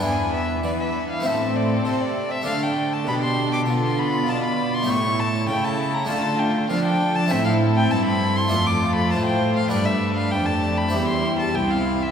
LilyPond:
<<
  \new Staff \with { instrumentName = "Violin" } { \time 4/4 \key a \minor \tempo 4 = 99 gis''8 e''8 d''16 e''8 f''16 e''8 d''8 c''16 d''8 e''16 | f''16 g''8 a''16 b''16 c'''8 d'''8 c'''16 b''8 a''16 b''8 c'''16 | cis'''8 a''8 g''16 a''8 bes''16 a''8 g''8 f''16 g''8 a''16 | e''16 f''8 g''16 a''16 b''8 c'''8 d'''8 b''16 a''16 g''8 f''16 |
d''16 e''8 f''16 g''16 a''8 b''8 c'''8 a''16 g''16 f''8 e''16 | }
  \new Staff \with { instrumentName = "Violin section" } { \time 4/4 \key a \minor b'4 b'4 a'2 | a'2. d''4 | cis''4 a'4 a'4 a'4 | a'2 a'4 c''4 |
b'4 g'4 g'2 | }
  \new Staff \with { instrumentName = "Violin section" } { \time 4/4 \key a \minor b4 b4 c'2 | d'4 g'4 f'2 | e'4 e'4 f'4 d'4 | e'4 e'4 f'2 |
d'4 d'4 e'4 e'4 | }
  \new Staff \with { instrumentName = "Viola section" } { \time 4/4 \key a \minor d'2 c'2 | a4 d'4 b2 | a4 a4 a4 d'4 | c'2 a2~ |
a4 a4 g4 c'4 | }
  \new Staff \with { instrumentName = "Harpsichord" } { \time 4/4 \key a \minor <b d' e'>2 <a c' e'>2 | <a d'>1 | <a e' g'>2 <a d' f'>2 | <a c' a'>2 <a d' a'>2 |
<b d' g'>2 <c' e' g'>2 | }
  \new Staff \with { instrumentName = "Harpsichord" } { \clef bass \time 4/4 \key a \minor e,4 e4 a,4 c4 | d4 b,4 d4 b,4 | a,4 cis4 d4 f4 | a,4 g,4 f,4 a,4 |
g,4 f,4 e,4 c,4 | }
  \new Staff \with { instrumentName = "Cello section" } { \clef bass \time 4/4 \key a \minor e,4 e4 a,4 c4 | d4 b,4 d4 b,4 | a,4 cis4 d4 f4 | a,4 g,4 f,4 a,4 |
g,4 f,4 e,4 c,4 | }
>>